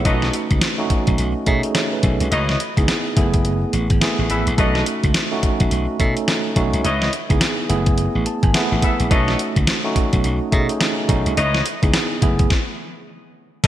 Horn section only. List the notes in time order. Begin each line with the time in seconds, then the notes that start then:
0.05 A4 B4 C#5 D#5
2.31 E4 B4 C#5 D#5
4.29 G#4 A4 B4 E5
4.58 A4 B4 C#5 D#5
6.84 E4 B4 C#5 D#5
8.82 G#4 A4 B4 E5
9.10 A4 B4 C#5 D#5
11.37 E4 B4 C#5 D#5
13.63 A4 B4 C#5 D#5